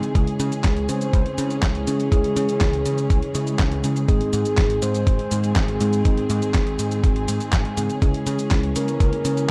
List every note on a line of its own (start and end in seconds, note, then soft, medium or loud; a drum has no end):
0.00 0.12 C#3 medium
0.00 0.11 D#3 medium
0.00 0.12 G#3 medium
0.00 7.98 G#3 medium
0.00 0.11 C4 medium
0.00 0.12 C4 medium
0.00 0.12 D#4 medium
0.00 0.12 G#4 medium
0.00 4.04 G#4 medium
0.00 closed hi-hat soft
0.00 cabasa soft
0.15 0.26 C#2 loud
0.15 1.84 C#3 medium
0.15 4.05 E3 medium
0.15 1.84 G#3 medium
0.15 1.84 C#4 medium
0.15 4.05 C#4 medium
0.15 1.84 E4 medium
0.15 1.84 G#4 loud
0.15 0.90 G#4 loud
0.15 kick loud
0.15 closed hi-hat medium
0.15 cabasa soft
0.27 closed hi-hat soft
0.40 0.50 C#3 loud
0.40 closed hi-hat medium
0.40 cabasa medium
0.52 closed hi-hat soft
0.52 cabasa soft
0.64 0.85 C#2 medium
0.64 kick loud
0.64 snare loud
0.64 clap loud
0.64 closed hi-hat medium
0.64 cabasa soft
0.77 closed hi-hat soft
0.89 1.10 C#3 medium
0.89 1.13 C5 loud
0.89 closed hi-hat medium
0.89 cabasa medium
1.01 closed hi-hat soft
1.01 cabasa soft
1.13 1.24 C#2 medium
1.13 1.59 C5 loud
1.13 kick loud
1.13 closed hi-hat medium
1.13 cabasa soft
1.26 closed hi-hat soft
1.38 1.59 C#3 medium
1.38 closed hi-hat medium
1.38 cabasa medium
1.50 closed hi-hat soft
1.50 cabasa soft
1.63 1.84 C#2 medium
1.63 2.08 G#4 medium
1.63 kick loud
1.63 snare loud
1.63 clap loud
1.63 closed hi-hat medium
1.63 cabasa soft
1.75 closed hi-hat soft
1.87 2.09 C#3 medium
1.87 2.08 C#3 medium
1.87 2.09 G#3 medium
1.87 2.09 C#4 medium
1.87 2.09 E4 medium
1.87 2.09 G#4 medium
1.87 closed hi-hat medium
1.87 cabasa medium
2.00 closed hi-hat soft
2.00 cabasa soft
2.12 2.22 C#2 loud
2.12 3.32 C#3 medium
2.12 3.32 G#3 medium
2.12 3.32 C#4 medium
2.12 3.32 E4 medium
2.12 3.06 G#4 medium
2.12 3.32 G#4 loud
2.12 kick loud
2.12 closed hi-hat medium
2.12 cabasa soft
2.24 closed hi-hat soft
2.36 2.47 C#3 loud
2.36 closed hi-hat medium
2.36 cabasa medium
2.49 closed hi-hat soft
2.49 cabasa soft
2.61 2.82 C#2 medium
2.61 kick loud
2.61 snare loud
2.61 clap loud
2.61 closed hi-hat medium
2.61 cabasa soft
2.73 closed hi-hat soft
2.86 3.07 C#3 medium
2.86 closed hi-hat medium
2.86 cabasa medium
2.98 closed hi-hat soft
2.98 cabasa soft
3.10 3.21 C#2 medium
3.10 kick loud
3.10 closed hi-hat medium
3.10 cabasa soft
3.23 closed hi-hat soft
3.35 3.56 C#3 medium
3.35 4.06 C#3 medium
3.35 4.06 G#3 medium
3.35 4.06 C#4 medium
3.35 4.06 E4 medium
3.35 4.06 G#4 medium
3.35 closed hi-hat medium
3.35 cabasa medium
3.47 closed hi-hat soft
3.47 cabasa soft
3.59 3.80 C#2 medium
3.59 kick loud
3.59 snare loud
3.59 clap loud
3.59 closed hi-hat medium
3.59 cabasa soft
3.72 closed hi-hat soft
3.84 4.05 C#3 medium
3.84 closed hi-hat medium
3.84 cabasa medium
3.96 closed hi-hat soft
3.96 cabasa soft
4.08 4.19 G#1 loud
4.08 5.78 G#2 medium
4.08 7.98 D#3 medium
4.08 5.78 G#3 medium
4.08 5.78 C4 medium
4.08 7.98 C4 medium
4.08 5.78 D#4 medium
4.08 4.84 G#4 loud
4.08 9.51 G#4 medium
4.08 5.78 G#4 loud
4.08 kick loud
4.08 closed hi-hat medium
4.08 cabasa soft
4.21 closed hi-hat soft
4.33 4.44 G#2 loud
4.33 closed hi-hat medium
4.33 cabasa medium
4.45 closed hi-hat soft
4.45 cabasa soft
4.58 4.79 G#1 medium
4.58 kick loud
4.58 snare loud
4.58 clap medium
4.58 closed hi-hat medium
4.58 cabasa soft
4.70 closed hi-hat soft
4.82 5.03 G#2 medium
4.82 5.06 C5 loud
4.82 closed hi-hat medium
4.82 cabasa medium
4.95 closed hi-hat soft
4.95 cabasa soft
5.07 5.17 G#1 medium
5.07 5.53 C5 loud
5.07 kick loud
5.07 closed hi-hat medium
5.07 cabasa soft
5.19 closed hi-hat soft
5.31 5.52 G#2 medium
5.31 closed hi-hat medium
5.31 cabasa medium
5.44 closed hi-hat soft
5.44 cabasa soft
5.56 5.77 G#1 medium
5.56 6.02 G#4 medium
5.56 kick loud
5.56 snare loud
5.56 clap loud
5.56 closed hi-hat medium
5.56 cabasa soft
5.68 closed hi-hat soft
5.81 6.02 G#2 medium
5.81 6.02 G#3 medium
5.81 6.02 C4 medium
5.81 6.02 D#4 medium
5.81 6.02 G#4 medium
5.81 closed hi-hat medium
5.81 cabasa medium
5.93 closed hi-hat soft
5.93 cabasa soft
6.05 6.16 G#1 loud
6.05 7.74 G#2 medium
6.05 7.74 G#3 medium
6.05 7.74 C4 medium
6.05 7.74 D#4 medium
6.05 7.00 G#4 medium
6.05 7.74 G#4 loud
6.05 kick loud
6.05 closed hi-hat medium
6.05 cabasa soft
6.17 closed hi-hat soft
6.30 6.40 G#2 loud
6.30 closed hi-hat medium
6.30 cabasa medium
6.42 closed hi-hat soft
6.42 cabasa soft
6.54 6.75 G#1 medium
6.54 kick loud
6.54 snare loud
6.54 clap medium
6.54 closed hi-hat medium
6.54 cabasa soft
6.67 closed hi-hat soft
6.79 7.00 G#2 medium
6.79 closed hi-hat medium
6.79 cabasa medium
6.91 closed hi-hat soft
6.91 cabasa soft
7.04 7.25 G#1 loud
7.04 kick loud
7.04 closed hi-hat medium
7.04 cabasa soft
7.16 closed hi-hat soft
7.28 7.39 G#2 medium
7.28 closed hi-hat medium
7.28 cabasa medium
7.40 closed hi-hat soft
7.40 cabasa soft
7.53 7.63 G#1 loud
7.53 kick loud
7.53 snare loud
7.53 clap loud
7.53 closed hi-hat medium
7.53 cabasa soft
7.65 closed hi-hat soft
7.77 7.88 G#2 medium
7.77 7.99 C#3 medium
7.77 7.99 G#3 medium
7.77 7.99 C4 medium
7.77 7.99 D#4 medium
7.77 7.99 G#4 medium
7.77 closed hi-hat medium
7.77 cabasa medium
7.90 closed hi-hat soft
7.90 cabasa soft
8.02 8.12 C#2 loud
8.02 9.51 C#3 medium
8.02 9.51 E3 medium
8.02 9.51 G#3 medium
8.02 9.51 C#4 medium
8.02 9.51 E4 medium
8.02 9.51 G#4 loud
8.02 8.77 G#4 loud
8.02 kick loud
8.02 closed hi-hat medium
8.02 cabasa soft
8.14 closed hi-hat soft
8.27 8.37 C#3 loud
8.27 closed hi-hat medium
8.27 cabasa medium
8.39 closed hi-hat soft
8.39 cabasa soft
8.51 8.72 C#2 medium
8.51 kick loud
8.51 snare loud
8.51 clap loud
8.51 closed hi-hat medium
8.51 cabasa soft
8.63 closed hi-hat soft
8.76 8.97 C#3 medium
8.76 9.00 A#4 loud
8.76 closed hi-hat loud
8.76 cabasa medium
8.88 closed hi-hat soft
8.88 cabasa soft
9.00 9.11 C#2 loud
9.00 9.51 A#4 loud
9.00 kick loud
9.00 closed hi-hat medium
9.00 cabasa soft
9.13 closed hi-hat soft
9.25 9.46 C#3 medium
9.25 closed hi-hat loud
9.25 cabasa medium
9.37 closed hi-hat soft
9.37 cabasa soft